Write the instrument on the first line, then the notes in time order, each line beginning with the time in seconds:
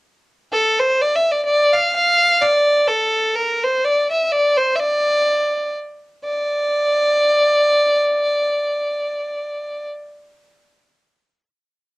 fiddle
0.53 A4
0.80 C5
1.01 D5
1.15 E5
1.32 D5
1.45 D5
1.73 F5
1.95 F5
2.42 D5
2.88 A4
3.36 A#4
3.64 C5
3.84 D5
4.11 E5
4.32 D5
4.57 C5
4.76 D5 E5
6.24 D5